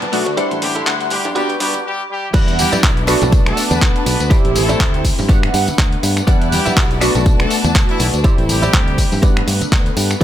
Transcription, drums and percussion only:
0.02 closed hi-hat soft
0.02 tambourine soft
0.02 high conga medium
0.02 low conga loud
0.13 open hi-hat loud
0.13 tambourine medium
0.27 closed hi-hat soft
0.27 tambourine soft
0.37 closed hi-hat medium
0.37 tambourine soft
0.51 closed hi-hat soft
0.51 tambourine soft
0.62 open hi-hat loud
0.62 tambourine medium
0.62 high conga medium
0.75 closed hi-hat soft
0.75 tambourine soft
0.87 clap loud
0.87 closed hi-hat medium
0.87 tambourine medium
1.01 closed hi-hat soft
1.01 tambourine soft
1.10 open hi-hat loud
1.10 tambourine medium
1.25 closed hi-hat soft
1.25 tambourine soft
1.25 low conga medium
1.36 closed hi-hat medium
1.36 tambourine medium
1.36 high conga loud
1.49 closed hi-hat soft
1.49 tambourine soft
1.60 open hi-hat loud
1.60 tambourine medium
1.74 closed hi-hat soft
1.74 tambourine soft
1.74 high conga medium
2.34 kick loud
2.34 closed hi-hat medium
2.34 crash loud
2.34 tambourine soft
2.48 closed hi-hat soft
2.48 tambourine soft
2.59 open hi-hat loud
2.59 tambourine medium
2.59 high conga medium
2.72 closed hi-hat soft
2.72 tambourine soft
2.72 low conga medium
2.83 kick loud
2.83 clap loud
2.83 closed hi-hat medium
2.83 tambourine soft
2.83 tambourine medium
2.97 closed hi-hat soft
2.97 tambourine soft
3.07 finger snap medium
3.07 open hi-hat loud
3.07 tambourine loud
3.07 tambourine medium
3.22 closed hi-hat soft
3.22 tambourine soft
3.22 low conga loud
3.32 kick loud
3.32 closed hi-hat medium
3.32 tambourine soft
3.32 tambourine medium
3.32 high conga medium
3.46 finger snap medium
3.46 closed hi-hat soft
3.46 tambourine soft
3.57 open hi-hat loud
3.57 tambourine medium
3.71 closed hi-hat soft
3.71 tambourine soft
3.71 high conga medium
3.82 kick loud
3.82 clap loud
3.82 closed hi-hat medium
3.82 tambourine medium
3.96 closed hi-hat soft
3.96 tambourine soft
4.06 open hi-hat loud
4.06 tambourine loud
4.06 tambourine medium
4.20 closed hi-hat soft
4.20 tambourine soft
4.31 kick loud
4.31 closed hi-hat medium
4.31 tambourine soft
4.45 closed hi-hat soft
4.45 tambourine soft
4.56 open hi-hat loud
4.56 tambourine medium
4.56 high conga medium
4.69 closed hi-hat soft
4.69 tambourine soft
4.69 low conga medium
4.80 kick loud
4.80 clap loud
4.80 closed hi-hat medium
4.80 tambourine soft
4.94 closed hi-hat soft
4.94 tambourine soft
5.05 kick medium
5.05 open hi-hat loud
5.05 tambourine medium
5.19 open hi-hat medium
5.19 tambourine soft
5.19 low conga loud
5.29 kick loud
5.29 closed hi-hat medium
5.29 tambourine soft
5.29 tambourine medium
5.29 high conga medium
5.43 finger snap medium
5.43 closed hi-hat soft
5.43 tambourine soft
5.43 low conga medium
5.54 open hi-hat loud
5.54 tambourine medium
5.68 closed hi-hat soft
5.68 tambourine soft
5.68 high conga medium
5.78 kick loud
5.78 clap loud
5.78 closed hi-hat medium
5.78 tambourine soft
5.78 tambourine medium
5.92 closed hi-hat soft
5.92 tambourine soft
6.03 open hi-hat loud
6.03 tambourine loud
6.03 tambourine medium
6.17 finger snap medium
6.17 closed hi-hat soft
6.17 tambourine soft
6.28 kick loud
6.28 closed hi-hat medium
6.28 tambourine soft
6.41 closed hi-hat soft
6.41 tambourine soft
6.52 open hi-hat loud
6.52 tambourine medium
6.52 high conga medium
6.66 closed hi-hat soft
6.66 tambourine soft
6.66 low conga medium
6.77 kick loud
6.77 clap loud
6.77 closed hi-hat medium
6.77 tambourine soft
6.91 closed hi-hat soft
6.91 tambourine soft
7.01 finger snap medium
7.01 open hi-hat loud
7.01 tambourine medium
7.15 closed hi-hat soft
7.15 tambourine soft
7.15 low conga medium
7.26 kick loud
7.26 closed hi-hat medium
7.26 tambourine soft
7.26 high conga medium
7.40 finger snap medium
7.40 closed hi-hat soft
7.40 tambourine soft
7.51 open hi-hat loud
7.51 tambourine medium
7.64 closed hi-hat soft
7.64 tambourine soft
7.64 high conga medium
7.75 kick loud
7.75 clap loud
7.75 closed hi-hat medium
7.75 tambourine medium
7.75 tambourine soft
7.89 closed hi-hat soft
7.89 tambourine soft
8.00 open hi-hat loud
8.00 tambourine medium
8.14 closed hi-hat soft
8.14 tambourine soft
8.24 kick loud
8.24 closed hi-hat medium
8.24 tambourine soft
8.38 closed hi-hat soft
8.38 tambourine soft
8.49 open hi-hat loud
8.49 tambourine medium
8.49 high conga medium
8.63 closed hi-hat soft
8.63 tambourine soft
8.63 low conga medium
8.73 kick loud
8.73 clap loud
8.73 closed hi-hat medium
8.73 tambourine medium
8.73 tambourine soft
8.88 closed hi-hat soft
8.88 tambourine soft
8.98 kick medium
8.98 open hi-hat loud
8.98 tambourine medium
9.12 open hi-hat medium
9.12 tambourine soft
9.12 low conga medium
9.23 kick loud
9.23 closed hi-hat medium
9.23 tambourine soft
9.23 tambourine medium
9.23 high conga loud
9.37 finger snap medium
9.37 closed hi-hat soft
9.37 tambourine soft
9.37 low conga medium
9.48 open hi-hat loud
9.48 tambourine medium
9.61 closed hi-hat soft
9.61 tambourine soft
9.61 high conga medium
9.72 kick loud
9.72 clap loud
9.72 closed hi-hat medium
9.72 tambourine soft
9.86 closed hi-hat soft
9.86 tambourine soft
9.97 open hi-hat loud
9.97 tambourine loud
9.97 tambourine medium
10.11 finger snap medium
10.11 closed hi-hat soft
10.11 tambourine soft

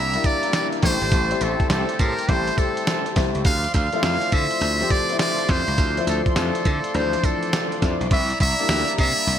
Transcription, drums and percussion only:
0.14 closed hi-hat medium
0.24 kick loud
0.24 closed hi-hat medium
0.24 tambourine medium
0.43 closed hi-hat medium
0.53 snare loud
0.53 closed hi-hat medium
0.53 tambourine loud
0.72 closed hi-hat medium
0.82 kick medium
0.82 snare medium
0.82 closed hi-hat medium
0.82 tambourine medium
1.02 closed hi-hat medium
1.12 kick loud
1.12 closed hi-hat medium
1.12 tambourine medium
1.31 closed hi-hat medium
1.41 closed hi-hat medium
1.41 tambourine medium
1.60 kick medium
1.60 closed hi-hat soft
1.70 snare loud
1.70 closed hi-hat medium
1.70 tambourine medium
1.89 closed hi-hat medium
1.99 kick loud
1.99 closed hi-hat medium
1.99 tambourine medium
2.19 closed hi-hat medium
2.29 kick medium
2.29 closed hi-hat medium
2.47 closed hi-hat medium
2.58 kick medium
2.58 closed hi-hat medium
2.58 tambourine medium
2.77 closed hi-hat medium
2.87 snare loud
2.87 closed hi-hat medium
2.87 tambourine loud
3.06 closed hi-hat medium
3.16 kick loud
3.16 snare medium
3.16 open hi-hat medium
3.16 tambourine medium
3.35 closed hi-hat medium
3.45 kick loud
3.45 closed hi-hat medium
3.45 tambourine medium
3.64 closed hi-hat medium
3.74 kick medium
3.74 closed hi-hat medium
3.74 tambourine medium
3.93 closed hi-hat soft
4.03 snare loud
4.03 closed hi-hat medium
4.03 tambourine medium
4.21 closed hi-hat medium
4.32 kick loud
4.32 closed hi-hat medium
4.32 tambourine medium
4.51 closed hi-hat medium
4.61 closed hi-hat medium
4.80 closed hi-hat medium
4.90 kick medium
4.90 closed hi-hat medium
4.90 tambourine medium
5.09 closed hi-hat medium
5.19 snare loud
5.19 closed hi-hat medium
5.19 tambourine loud
5.39 closed hi-hat medium
5.48 kick loud
5.48 snare medium
5.48 closed hi-hat medium
5.48 tambourine medium
5.68 closed hi-hat medium
5.78 kick loud
5.78 closed hi-hat medium
5.78 tambourine medium
5.97 closed hi-hat medium
6.07 closed hi-hat medium
6.07 tambourine medium
6.26 kick loud
6.26 closed hi-hat soft
6.36 snare loud
6.36 closed hi-hat medium
6.36 tambourine medium
6.55 closed hi-hat medium
6.65 kick loud
6.65 closed hi-hat medium
6.65 tambourine medium
6.84 closed hi-hat medium
6.94 closed hi-hat medium
7.13 closed hi-hat medium
7.24 kick medium
7.24 closed hi-hat medium
7.24 tambourine medium
7.43 closed hi-hat medium
7.53 snare loud
7.53 closed hi-hat medium
7.53 tambourine loud
7.72 closed hi-hat medium
7.82 kick loud
7.82 snare medium
7.82 closed hi-hat medium
7.82 tambourine medium
8.01 closed hi-hat medium
8.11 kick loud
8.11 closed hi-hat medium
8.11 tambourine medium
8.30 closed hi-hat medium
8.40 kick medium
8.40 closed hi-hat medium
8.40 tambourine medium
8.59 closed hi-hat soft
8.69 snare loud
8.69 closed hi-hat medium
8.69 tambourine medium
8.88 closed hi-hat medium
8.98 kick loud
8.98 closed hi-hat medium
8.98 tambourine medium
9.18 closed hi-hat medium
9.28 closed hi-hat medium

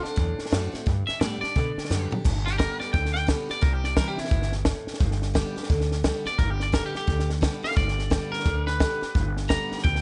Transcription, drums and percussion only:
0.05 snare soft
0.17 kick loud
0.17 snare soft
0.39 snare soft
0.46 snare soft
0.53 snare loud
0.53 hi-hat pedal medium
0.74 snare soft
0.87 kick loud
0.87 snare soft
1.08 snare soft
1.21 snare loud
1.21 hi-hat pedal medium
1.43 snare soft
1.56 kick loud
1.56 snare soft
1.78 snare soft
1.85 snare soft
1.91 snare medium
1.91 hi-hat pedal medium
2.12 floor tom medium
2.25 kick loud
2.25 snare soft
2.25 crash medium
2.47 snare soft
2.59 kick medium
2.59 snare loud
2.59 hi-hat pedal medium
2.80 snare soft
2.94 kick loud
2.94 snare soft
3.05 snare soft
3.15 snare soft
3.28 kick medium
3.28 snare loud
3.28 hi-hat pedal medium
3.50 snare soft
3.63 kick loud
3.63 snare soft
3.84 snare soft
3.97 kick medium
3.97 snare loud
3.97 hi-hat pedal medium
4.18 snare soft
4.25 snare soft
4.31 kick loud
4.31 snare soft
4.42 snare soft
4.52 snare soft
4.65 kick medium
4.65 snare loud
4.65 hi-hat pedal medium
4.87 snare soft
4.94 snare soft
5.00 kick loud
5.00 snare soft
5.11 snare soft
5.22 snare soft
5.35 kick medium
5.35 snare loud
5.35 hi-hat pedal medium
5.57 snare soft
5.63 snare soft
5.70 kick loud
5.70 snare soft
5.81 snare soft
5.92 snare soft
6.04 kick medium
6.04 snare loud
6.04 hi-hat pedal medium
6.26 snare soft
6.39 kick loud
6.39 snare soft
6.60 snare soft
6.73 kick medium
6.73 snare loud
6.73 hi-hat pedal medium
6.95 snare soft
7.08 kick loud
7.08 snare soft
7.19 snare soft
7.30 snare soft
7.42 kick medium
7.42 snare loud
7.42 hi-hat pedal medium
7.64 snare soft
7.71 snare soft
7.77 kick loud
7.77 snare soft
7.88 snare soft
7.99 snare soft
8.11 kick medium
8.11 snare loud
8.11 hi-hat pedal medium
8.33 snare soft
8.40 snare soft
8.46 kick loud
8.46 snare soft
8.67 snare soft
8.80 kick medium
8.80 snare loud
8.80 hi-hat pedal medium
9.02 snare soft
9.15 kick loud
9.15 snare soft
9.37 snare soft
9.50 kick medium
9.50 snare loud
9.50 hi-hat pedal medium
9.72 snare soft
9.78 snare soft
9.85 kick loud
9.85 snare soft
9.95 snare soft

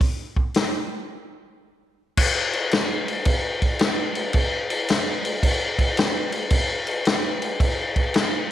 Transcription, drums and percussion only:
0.01 kick loud
0.01 open hi-hat medium
0.36 kick medium
0.54 snare loud
0.54 open hi-hat soft
2.17 kick loud
2.17 crash loud
2.17 crash medium
2.53 crash medium
2.71 snare loud
2.71 crash medium
3.08 crash medium
3.25 kick loud
3.25 crash medium
3.62 kick medium
3.62 crash medium
3.79 snare loud
3.79 crash medium
4.15 crash medium
4.33 kick loud
4.33 crash medium
4.70 crash medium
4.89 snare loud
4.89 crash medium
5.25 crash medium
5.43 kick loud
5.43 crash medium
5.79 kick medium
5.79 crash medium
5.97 snare loud
5.97 crash medium
6.32 crash medium
6.50 kick loud
6.50 crash medium
6.87 crash medium
7.05 snare loud
7.05 crash medium
7.42 crash medium
7.60 kick loud
7.60 crash medium
7.96 kick medium
7.96 crash medium
8.14 snare loud
8.14 crash medium

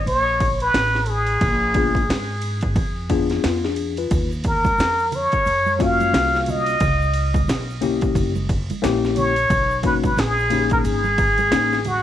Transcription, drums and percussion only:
0.07 ride medium
0.40 kick loud
0.40 ride medium
0.60 ride soft
0.74 snare loud
0.74 hi-hat pedal medium
0.74 ride medium
0.95 snare soft
1.06 ride medium
1.27 ride soft
1.41 kick loud
1.41 ride medium
1.74 kick medium
1.74 ride medium
1.95 kick medium
1.95 ride soft
2.10 snare loud
2.10 hi-hat pedal medium
2.10 ride medium
2.42 ride medium
2.61 kick medium
2.61 ride soft
2.76 kick medium
2.76 ride medium
3.10 kick medium
3.10 ride medium
3.30 snare soft
3.30 ride soft
3.44 snare loud
3.44 hi-hat pedal medium
3.44 ride medium
3.64 snare soft
3.76 ride medium
3.97 ride soft
4.11 kick loud
4.11 ride medium
4.11 shaker medium
4.32 shaker soft
4.44 kick medium
4.44 ride medium
4.44 shaker soft
4.65 kick medium
4.65 ride soft
4.65 high conga medium
4.65 shaker soft
4.78 snare loud
4.78 hi-hat pedal medium
4.78 ride medium
4.78 shaker medium
4.99 shaker soft
5.12 ride medium
5.12 low conga medium
5.12 shaker soft
5.32 kick medium
5.32 ride soft
5.32 shaker soft
5.46 ride medium
5.46 shaker medium
5.66 high conga medium
5.66 shaker soft
5.79 kick loud
5.79 ride medium
5.79 shaker soft
6.00 ride soft
6.00 high conga medium
6.00 shaker soft
6.14 snare loud
6.14 hi-hat pedal medium
6.14 ride medium
6.14 shaker medium
6.35 snare soft
6.35 shaker soft
6.46 ride medium
6.46 high conga soft
6.46 low conga medium
6.46 shaker soft
6.66 ride soft
6.66 shaker medium
6.80 kick loud
6.80 ride medium
6.80 shaker medium
7.02 shaker soft
7.14 ride medium
7.14 shaker soft
7.34 kick medium
7.34 ride soft
7.34 high conga medium
7.34 shaker soft
7.49 snare loud
7.49 hi-hat pedal medium
7.49 ride medium
7.49 shaker medium
7.70 shaker soft
7.82 ride medium
7.82 low conga medium
7.82 shaker soft
8.01 kick medium
8.01 ride soft
8.01 shaker soft
8.15 kick medium
8.15 ride medium
8.15 shaker medium
8.36 high conga medium
8.36 shaker soft
8.49 kick medium
8.49 ride medium
8.49 shaker soft
8.70 ride soft
8.70 high conga medium
8.70 shaker soft
8.84 snare loud
8.84 hi-hat pedal medium
8.84 ride medium
8.84 shaker medium
9.04 snare soft
9.04 shaker soft
9.16 ride medium
9.16 high conga soft
9.16 low conga medium
9.16 shaker soft
9.36 ride soft
9.36 shaker medium
9.50 kick loud
9.50 ride medium
9.50 shaker medium
9.71 shaker soft
9.83 kick medium
9.83 ride medium
9.83 shaker soft
10.04 kick medium
10.04 ride soft
10.04 high conga medium
10.04 shaker soft
10.17 snare loud
10.17 hi-hat pedal medium
10.17 ride medium
10.17 shaker medium
10.39 shaker soft
10.50 ride medium
10.50 low conga medium
10.50 shaker soft
10.70 kick medium
10.70 ride soft
10.70 shaker soft
10.85 ride medium
10.85 shaker medium
11.04 high conga medium
11.04 shaker soft
11.18 kick loud
11.18 ride medium
11.18 shaker soft
11.38 ride soft
11.38 high conga medium
11.38 shaker soft
11.52 snare loud
11.52 hi-hat pedal medium
11.52 ride medium
11.52 shaker medium
11.72 snare soft
11.72 shaker soft
11.85 ride medium
11.85 high conga soft
11.85 low conga medium
11.85 shaker soft

